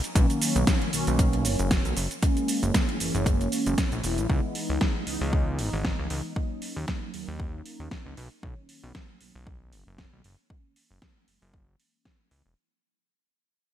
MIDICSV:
0, 0, Header, 1, 4, 480
1, 0, Start_track
1, 0, Tempo, 517241
1, 142, Time_signature, 4, 2, 24, 8
1, 12745, End_track
2, 0, Start_track
2, 0, Title_t, "Analog polysynth"
2, 0, Program_c, 0, 90
2, 136, Note_on_c, 0, 51, 80
2, 142, Note_on_c, 0, 54, 75
2, 146, Note_on_c, 0, 58, 76
2, 153, Note_on_c, 0, 61, 88
2, 833, Note_off_c, 0, 51, 0
2, 836, Note_off_c, 0, 54, 0
2, 838, Note_off_c, 0, 58, 0
2, 842, Note_off_c, 0, 61, 0
2, 854, Note_on_c, 0, 51, 75
2, 860, Note_on_c, 0, 54, 70
2, 867, Note_on_c, 0, 58, 73
2, 873, Note_on_c, 0, 61, 85
2, 1805, Note_off_c, 0, 51, 0
2, 1808, Note_off_c, 0, 54, 0
2, 1812, Note_off_c, 0, 58, 0
2, 1815, Note_off_c, 0, 61, 0
2, 2054, Note_on_c, 0, 52, 78
2, 2059, Note_on_c, 0, 56, 75
2, 2066, Note_on_c, 0, 58, 76
2, 2071, Note_on_c, 0, 61, 90
2, 2753, Note_off_c, 0, 52, 0
2, 2755, Note_off_c, 0, 56, 0
2, 2758, Note_off_c, 0, 58, 0
2, 2761, Note_off_c, 0, 61, 0
2, 2775, Note_on_c, 0, 52, 77
2, 2782, Note_on_c, 0, 56, 72
2, 2789, Note_on_c, 0, 58, 70
2, 2795, Note_on_c, 0, 61, 84
2, 3717, Note_off_c, 0, 52, 0
2, 3721, Note_off_c, 0, 56, 0
2, 3724, Note_off_c, 0, 58, 0
2, 3727, Note_off_c, 0, 61, 0
2, 3739, Note_on_c, 0, 52, 72
2, 3742, Note_on_c, 0, 56, 66
2, 3745, Note_on_c, 0, 58, 66
2, 3749, Note_on_c, 0, 64, 82
2, 3955, Note_off_c, 0, 52, 0
2, 3956, Note_off_c, 0, 56, 0
2, 3958, Note_off_c, 0, 58, 0
2, 3960, Note_off_c, 0, 64, 0
2, 3976, Note_on_c, 0, 52, 82
2, 3982, Note_on_c, 0, 56, 73
2, 3988, Note_on_c, 0, 59, 74
2, 3994, Note_on_c, 0, 63, 87
2, 4674, Note_off_c, 0, 52, 0
2, 4676, Note_off_c, 0, 56, 0
2, 4680, Note_off_c, 0, 59, 0
2, 4682, Note_off_c, 0, 63, 0
2, 4694, Note_on_c, 0, 52, 75
2, 4699, Note_on_c, 0, 56, 67
2, 4706, Note_on_c, 0, 59, 69
2, 4712, Note_on_c, 0, 63, 86
2, 5872, Note_off_c, 0, 52, 0
2, 5875, Note_off_c, 0, 56, 0
2, 5879, Note_off_c, 0, 59, 0
2, 5881, Note_off_c, 0, 63, 0
2, 5892, Note_on_c, 0, 54, 78
2, 5897, Note_on_c, 0, 58, 73
2, 5904, Note_on_c, 0, 61, 72
2, 5909, Note_on_c, 0, 63, 86
2, 6591, Note_off_c, 0, 54, 0
2, 6594, Note_off_c, 0, 58, 0
2, 6598, Note_off_c, 0, 61, 0
2, 6600, Note_off_c, 0, 63, 0
2, 6610, Note_on_c, 0, 54, 77
2, 6616, Note_on_c, 0, 58, 71
2, 6621, Note_on_c, 0, 61, 69
2, 6628, Note_on_c, 0, 63, 82
2, 7563, Note_off_c, 0, 54, 0
2, 7566, Note_off_c, 0, 58, 0
2, 7569, Note_off_c, 0, 61, 0
2, 7572, Note_off_c, 0, 63, 0
2, 7812, Note_on_c, 0, 51, 79
2, 7818, Note_on_c, 0, 54, 71
2, 7825, Note_on_c, 0, 58, 75
2, 7830, Note_on_c, 0, 61, 88
2, 8511, Note_off_c, 0, 51, 0
2, 8514, Note_off_c, 0, 54, 0
2, 8518, Note_off_c, 0, 58, 0
2, 8520, Note_off_c, 0, 61, 0
2, 8532, Note_on_c, 0, 51, 75
2, 8540, Note_on_c, 0, 54, 70
2, 8544, Note_on_c, 0, 58, 70
2, 8550, Note_on_c, 0, 61, 84
2, 9484, Note_off_c, 0, 51, 0
2, 9488, Note_off_c, 0, 54, 0
2, 9490, Note_off_c, 0, 58, 0
2, 9493, Note_off_c, 0, 61, 0
2, 9738, Note_on_c, 0, 52, 79
2, 9744, Note_on_c, 0, 56, 74
2, 9750, Note_on_c, 0, 58, 71
2, 9756, Note_on_c, 0, 61, 87
2, 10434, Note_off_c, 0, 52, 0
2, 10437, Note_off_c, 0, 56, 0
2, 10441, Note_off_c, 0, 58, 0
2, 10444, Note_off_c, 0, 61, 0
2, 10457, Note_on_c, 0, 52, 78
2, 10463, Note_on_c, 0, 56, 68
2, 10469, Note_on_c, 0, 58, 69
2, 10475, Note_on_c, 0, 61, 81
2, 11398, Note_off_c, 0, 52, 0
2, 11401, Note_off_c, 0, 56, 0
2, 11404, Note_off_c, 0, 58, 0
2, 11407, Note_off_c, 0, 61, 0
2, 11420, Note_on_c, 0, 52, 69
2, 11422, Note_on_c, 0, 56, 64
2, 11425, Note_on_c, 0, 58, 67
2, 11429, Note_on_c, 0, 64, 78
2, 11635, Note_off_c, 0, 52, 0
2, 11636, Note_off_c, 0, 56, 0
2, 11638, Note_off_c, 0, 58, 0
2, 11640, Note_off_c, 0, 64, 0
2, 12745, End_track
3, 0, Start_track
3, 0, Title_t, "Analog synth bass"
3, 0, Program_c, 1, 38
3, 144, Note_on_c, 1, 35, 93
3, 250, Note_off_c, 1, 35, 0
3, 517, Note_on_c, 1, 35, 93
3, 602, Note_off_c, 1, 35, 0
3, 865, Note_on_c, 1, 35, 43
3, 970, Note_off_c, 1, 35, 0
3, 998, Note_on_c, 1, 35, 102
3, 1346, Note_on_c, 1, 30, 95
3, 1360, Note_off_c, 1, 35, 0
3, 1450, Note_off_c, 1, 30, 0
3, 1479, Note_on_c, 1, 30, 100
3, 1664, Note_off_c, 1, 30, 0
3, 1718, Note_on_c, 1, 35, 88
3, 1802, Note_off_c, 1, 35, 0
3, 1823, Note_on_c, 1, 30, 86
3, 1929, Note_off_c, 1, 30, 0
3, 2438, Note_on_c, 1, 30, 93
3, 2522, Note_off_c, 1, 30, 0
3, 2785, Note_on_c, 1, 30, 43
3, 2890, Note_off_c, 1, 30, 0
3, 2920, Note_on_c, 1, 30, 103
3, 3230, Note_off_c, 1, 30, 0
3, 3400, Note_on_c, 1, 30, 87
3, 3484, Note_off_c, 1, 30, 0
3, 3641, Note_on_c, 1, 34, 82
3, 3724, Note_off_c, 1, 34, 0
3, 3748, Note_on_c, 1, 28, 80
3, 3882, Note_on_c, 1, 34, 83
3, 3896, Note_off_c, 1, 28, 0
3, 3964, Note_off_c, 1, 34, 0
3, 3986, Note_on_c, 1, 37, 93
3, 4091, Note_off_c, 1, 37, 0
3, 4357, Note_on_c, 1, 37, 92
3, 4442, Note_off_c, 1, 37, 0
3, 4701, Note_on_c, 1, 37, 43
3, 4808, Note_off_c, 1, 37, 0
3, 4836, Note_on_c, 1, 37, 105
3, 5183, Note_on_c, 1, 32, 93
3, 5197, Note_off_c, 1, 37, 0
3, 5289, Note_off_c, 1, 32, 0
3, 5317, Note_on_c, 1, 32, 96
3, 5503, Note_off_c, 1, 32, 0
3, 5557, Note_on_c, 1, 37, 87
3, 5642, Note_off_c, 1, 37, 0
3, 5664, Note_on_c, 1, 37, 82
3, 5770, Note_off_c, 1, 37, 0
3, 6277, Note_on_c, 1, 39, 88
3, 6362, Note_off_c, 1, 39, 0
3, 6626, Note_on_c, 1, 39, 42
3, 6731, Note_off_c, 1, 39, 0
3, 6756, Note_on_c, 1, 39, 103
3, 7068, Note_off_c, 1, 39, 0
3, 7235, Note_on_c, 1, 39, 88
3, 7321, Note_off_c, 1, 39, 0
3, 7478, Note_on_c, 1, 37, 96
3, 7562, Note_off_c, 1, 37, 0
3, 7586, Note_on_c, 1, 35, 100
3, 7691, Note_off_c, 1, 35, 0
3, 7824, Note_on_c, 1, 35, 93
3, 7930, Note_off_c, 1, 35, 0
3, 8198, Note_on_c, 1, 35, 90
3, 8282, Note_off_c, 1, 35, 0
3, 8546, Note_on_c, 1, 35, 42
3, 8650, Note_off_c, 1, 35, 0
3, 8679, Note_on_c, 1, 35, 102
3, 9026, Note_on_c, 1, 30, 93
3, 9040, Note_off_c, 1, 35, 0
3, 9131, Note_off_c, 1, 30, 0
3, 9160, Note_on_c, 1, 30, 93
3, 9345, Note_off_c, 1, 30, 0
3, 9400, Note_on_c, 1, 35, 88
3, 9483, Note_off_c, 1, 35, 0
3, 9510, Note_on_c, 1, 30, 82
3, 9612, Note_off_c, 1, 30, 0
3, 10121, Note_on_c, 1, 30, 92
3, 10204, Note_off_c, 1, 30, 0
3, 10466, Note_on_c, 1, 30, 41
3, 10570, Note_off_c, 1, 30, 0
3, 10597, Note_on_c, 1, 30, 102
3, 10909, Note_off_c, 1, 30, 0
3, 11426, Note_on_c, 1, 37, 97
3, 11530, Note_off_c, 1, 37, 0
3, 11558, Note_on_c, 1, 28, 90
3, 11642, Note_off_c, 1, 28, 0
3, 12745, End_track
4, 0, Start_track
4, 0, Title_t, "Drums"
4, 37, Note_on_c, 9, 42, 37
4, 41, Note_on_c, 9, 69, 31
4, 130, Note_off_c, 9, 42, 0
4, 134, Note_off_c, 9, 69, 0
4, 144, Note_on_c, 9, 36, 119
4, 145, Note_on_c, 9, 42, 85
4, 148, Note_on_c, 9, 69, 39
4, 236, Note_off_c, 9, 36, 0
4, 237, Note_off_c, 9, 42, 0
4, 241, Note_off_c, 9, 69, 0
4, 277, Note_on_c, 9, 42, 36
4, 281, Note_on_c, 9, 69, 29
4, 370, Note_off_c, 9, 42, 0
4, 374, Note_off_c, 9, 69, 0
4, 386, Note_on_c, 9, 46, 112
4, 389, Note_on_c, 9, 69, 73
4, 478, Note_off_c, 9, 46, 0
4, 482, Note_off_c, 9, 69, 0
4, 519, Note_on_c, 9, 42, 37
4, 522, Note_on_c, 9, 69, 30
4, 612, Note_off_c, 9, 42, 0
4, 615, Note_off_c, 9, 69, 0
4, 624, Note_on_c, 9, 36, 119
4, 624, Note_on_c, 9, 42, 85
4, 625, Note_on_c, 9, 38, 121
4, 628, Note_on_c, 9, 69, 43
4, 717, Note_off_c, 9, 36, 0
4, 717, Note_off_c, 9, 38, 0
4, 717, Note_off_c, 9, 42, 0
4, 720, Note_off_c, 9, 69, 0
4, 758, Note_on_c, 9, 42, 36
4, 850, Note_off_c, 9, 42, 0
4, 863, Note_on_c, 9, 46, 102
4, 866, Note_on_c, 9, 69, 70
4, 955, Note_off_c, 9, 46, 0
4, 959, Note_off_c, 9, 69, 0
4, 995, Note_on_c, 9, 42, 37
4, 999, Note_on_c, 9, 69, 30
4, 1088, Note_off_c, 9, 42, 0
4, 1092, Note_off_c, 9, 69, 0
4, 1104, Note_on_c, 9, 36, 116
4, 1104, Note_on_c, 9, 42, 90
4, 1107, Note_on_c, 9, 69, 41
4, 1197, Note_off_c, 9, 36, 0
4, 1197, Note_off_c, 9, 42, 0
4, 1200, Note_off_c, 9, 69, 0
4, 1237, Note_on_c, 9, 42, 37
4, 1330, Note_off_c, 9, 42, 0
4, 1344, Note_on_c, 9, 46, 104
4, 1347, Note_on_c, 9, 69, 69
4, 1437, Note_off_c, 9, 46, 0
4, 1440, Note_off_c, 9, 69, 0
4, 1478, Note_on_c, 9, 42, 36
4, 1481, Note_on_c, 9, 69, 30
4, 1570, Note_off_c, 9, 42, 0
4, 1574, Note_off_c, 9, 69, 0
4, 1585, Note_on_c, 9, 36, 116
4, 1585, Note_on_c, 9, 42, 86
4, 1586, Note_on_c, 9, 38, 120
4, 1589, Note_on_c, 9, 69, 42
4, 1678, Note_off_c, 9, 36, 0
4, 1678, Note_off_c, 9, 42, 0
4, 1679, Note_off_c, 9, 38, 0
4, 1682, Note_off_c, 9, 69, 0
4, 1718, Note_on_c, 9, 42, 36
4, 1721, Note_on_c, 9, 69, 29
4, 1811, Note_off_c, 9, 42, 0
4, 1814, Note_off_c, 9, 69, 0
4, 1824, Note_on_c, 9, 46, 102
4, 1828, Note_on_c, 9, 69, 70
4, 1917, Note_off_c, 9, 46, 0
4, 1920, Note_off_c, 9, 69, 0
4, 1957, Note_on_c, 9, 42, 37
4, 1961, Note_on_c, 9, 69, 30
4, 2050, Note_off_c, 9, 42, 0
4, 2054, Note_off_c, 9, 69, 0
4, 2065, Note_on_c, 9, 42, 84
4, 2066, Note_on_c, 9, 36, 114
4, 2069, Note_on_c, 9, 69, 40
4, 2158, Note_off_c, 9, 42, 0
4, 2159, Note_off_c, 9, 36, 0
4, 2161, Note_off_c, 9, 69, 0
4, 2197, Note_on_c, 9, 42, 36
4, 2200, Note_on_c, 9, 69, 29
4, 2290, Note_off_c, 9, 42, 0
4, 2293, Note_off_c, 9, 69, 0
4, 2305, Note_on_c, 9, 46, 108
4, 2308, Note_on_c, 9, 69, 74
4, 2397, Note_off_c, 9, 46, 0
4, 2401, Note_off_c, 9, 69, 0
4, 2439, Note_on_c, 9, 42, 35
4, 2442, Note_on_c, 9, 69, 31
4, 2531, Note_off_c, 9, 42, 0
4, 2535, Note_off_c, 9, 69, 0
4, 2546, Note_on_c, 9, 36, 114
4, 2548, Note_on_c, 9, 38, 115
4, 2548, Note_on_c, 9, 42, 88
4, 2551, Note_on_c, 9, 69, 42
4, 2639, Note_off_c, 9, 36, 0
4, 2640, Note_off_c, 9, 42, 0
4, 2641, Note_off_c, 9, 38, 0
4, 2644, Note_off_c, 9, 69, 0
4, 2680, Note_on_c, 9, 42, 35
4, 2773, Note_off_c, 9, 42, 0
4, 2787, Note_on_c, 9, 46, 100
4, 2790, Note_on_c, 9, 69, 72
4, 2879, Note_off_c, 9, 46, 0
4, 2883, Note_off_c, 9, 69, 0
4, 2921, Note_on_c, 9, 42, 35
4, 2925, Note_on_c, 9, 69, 31
4, 3014, Note_off_c, 9, 42, 0
4, 3017, Note_off_c, 9, 69, 0
4, 3026, Note_on_c, 9, 36, 117
4, 3030, Note_on_c, 9, 42, 85
4, 3034, Note_on_c, 9, 69, 43
4, 3119, Note_off_c, 9, 36, 0
4, 3123, Note_off_c, 9, 42, 0
4, 3127, Note_off_c, 9, 69, 0
4, 3163, Note_on_c, 9, 42, 35
4, 3166, Note_on_c, 9, 69, 28
4, 3255, Note_off_c, 9, 42, 0
4, 3259, Note_off_c, 9, 69, 0
4, 3268, Note_on_c, 9, 46, 99
4, 3271, Note_on_c, 9, 69, 71
4, 3360, Note_off_c, 9, 46, 0
4, 3364, Note_off_c, 9, 69, 0
4, 3400, Note_on_c, 9, 42, 34
4, 3404, Note_on_c, 9, 69, 31
4, 3493, Note_off_c, 9, 42, 0
4, 3496, Note_off_c, 9, 69, 0
4, 3506, Note_on_c, 9, 36, 109
4, 3507, Note_on_c, 9, 42, 83
4, 3508, Note_on_c, 9, 38, 115
4, 3511, Note_on_c, 9, 69, 40
4, 3599, Note_off_c, 9, 36, 0
4, 3600, Note_off_c, 9, 38, 0
4, 3600, Note_off_c, 9, 42, 0
4, 3603, Note_off_c, 9, 69, 0
4, 3638, Note_on_c, 9, 42, 34
4, 3641, Note_on_c, 9, 69, 28
4, 3730, Note_off_c, 9, 42, 0
4, 3734, Note_off_c, 9, 69, 0
4, 3745, Note_on_c, 9, 46, 101
4, 3748, Note_on_c, 9, 69, 71
4, 3838, Note_off_c, 9, 46, 0
4, 3841, Note_off_c, 9, 69, 0
4, 3878, Note_on_c, 9, 42, 36
4, 3882, Note_on_c, 9, 69, 30
4, 3971, Note_off_c, 9, 42, 0
4, 3974, Note_off_c, 9, 69, 0
4, 3986, Note_on_c, 9, 36, 106
4, 4079, Note_off_c, 9, 36, 0
4, 4223, Note_on_c, 9, 46, 100
4, 4316, Note_off_c, 9, 46, 0
4, 4464, Note_on_c, 9, 38, 108
4, 4466, Note_on_c, 9, 36, 109
4, 4556, Note_off_c, 9, 38, 0
4, 4559, Note_off_c, 9, 36, 0
4, 4704, Note_on_c, 9, 46, 96
4, 4797, Note_off_c, 9, 46, 0
4, 4945, Note_on_c, 9, 36, 109
4, 5038, Note_off_c, 9, 36, 0
4, 5184, Note_on_c, 9, 46, 94
4, 5277, Note_off_c, 9, 46, 0
4, 5425, Note_on_c, 9, 36, 104
4, 5426, Note_on_c, 9, 38, 109
4, 5518, Note_off_c, 9, 36, 0
4, 5518, Note_off_c, 9, 38, 0
4, 5663, Note_on_c, 9, 46, 100
4, 5756, Note_off_c, 9, 46, 0
4, 5904, Note_on_c, 9, 36, 103
4, 5997, Note_off_c, 9, 36, 0
4, 6142, Note_on_c, 9, 46, 97
4, 6235, Note_off_c, 9, 46, 0
4, 6384, Note_on_c, 9, 36, 106
4, 6384, Note_on_c, 9, 38, 106
4, 6476, Note_off_c, 9, 38, 0
4, 6477, Note_off_c, 9, 36, 0
4, 6623, Note_on_c, 9, 46, 91
4, 6716, Note_off_c, 9, 46, 0
4, 6864, Note_on_c, 9, 36, 104
4, 6956, Note_off_c, 9, 36, 0
4, 7104, Note_on_c, 9, 46, 96
4, 7197, Note_off_c, 9, 46, 0
4, 7343, Note_on_c, 9, 36, 103
4, 7344, Note_on_c, 9, 38, 105
4, 7436, Note_off_c, 9, 36, 0
4, 7437, Note_off_c, 9, 38, 0
4, 7584, Note_on_c, 9, 46, 91
4, 7677, Note_off_c, 9, 46, 0
4, 7824, Note_on_c, 9, 36, 106
4, 7917, Note_off_c, 9, 36, 0
4, 8063, Note_on_c, 9, 46, 93
4, 8156, Note_off_c, 9, 46, 0
4, 8304, Note_on_c, 9, 38, 109
4, 8305, Note_on_c, 9, 36, 103
4, 8397, Note_off_c, 9, 36, 0
4, 8397, Note_off_c, 9, 38, 0
4, 8543, Note_on_c, 9, 46, 90
4, 8636, Note_off_c, 9, 46, 0
4, 8785, Note_on_c, 9, 36, 105
4, 8878, Note_off_c, 9, 36, 0
4, 9025, Note_on_c, 9, 46, 88
4, 9118, Note_off_c, 9, 46, 0
4, 9265, Note_on_c, 9, 36, 99
4, 9266, Note_on_c, 9, 38, 106
4, 9358, Note_off_c, 9, 36, 0
4, 9359, Note_off_c, 9, 38, 0
4, 9506, Note_on_c, 9, 46, 92
4, 9599, Note_off_c, 9, 46, 0
4, 9745, Note_on_c, 9, 36, 103
4, 9838, Note_off_c, 9, 36, 0
4, 9987, Note_on_c, 9, 46, 95
4, 10079, Note_off_c, 9, 46, 0
4, 10226, Note_on_c, 9, 36, 103
4, 10226, Note_on_c, 9, 38, 113
4, 10319, Note_off_c, 9, 36, 0
4, 10319, Note_off_c, 9, 38, 0
4, 10466, Note_on_c, 9, 46, 89
4, 10559, Note_off_c, 9, 46, 0
4, 10599, Note_on_c, 9, 46, 53
4, 10692, Note_off_c, 9, 46, 0
4, 10705, Note_on_c, 9, 36, 102
4, 10798, Note_off_c, 9, 36, 0
4, 10946, Note_on_c, 9, 46, 88
4, 11039, Note_off_c, 9, 46, 0
4, 11186, Note_on_c, 9, 36, 102
4, 11187, Note_on_c, 9, 38, 108
4, 11279, Note_off_c, 9, 36, 0
4, 11279, Note_off_c, 9, 38, 0
4, 11425, Note_on_c, 9, 46, 92
4, 11518, Note_off_c, 9, 46, 0
4, 12745, End_track
0, 0, End_of_file